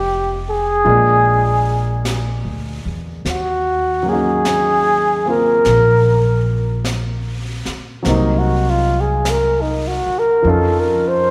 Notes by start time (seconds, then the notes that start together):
Already playing: F1 F3 G#3 C4 D#4 G4 G5
0.50 G#4
0.85 A#1 G#3 A#3 D4 F4, brush sweep
0.89 G#4
2.05 brush sweep, snare, hi-hat pedal
2.45 D2
2.85 E2
3.25 D#2, brush sweep, snare
3.30 F#4
4.03 F#3 A#3
4.08 C#4 D#4 G#4
4.13 F#4
4.45 brush sweep, snare, hi-hat pedal
5.26 A#3 C4 F4
5.31 A#4
5.65 A#1, brush sweep, snare
6.85 brush sweep, snare, hi-hat pedal
7.65 muted upright bass stroke, snare
8.03 C2 F#3 A#3 C4 D#4, brush sweep, snare
8.07 D#4 A#4
8.38 F#4
8.70 F4
9.01 G#4
9.25 brush sweep, snare, hi-hat pedal
9.30 A#4
9.62 D#4
9.88 F#4
10.07 muted upright bass stroke
10.19 A#4
10.42 F2 F3 C#4, brush sweep
10.47 D#4 F4 A4
10.80 A#4
11.08 C5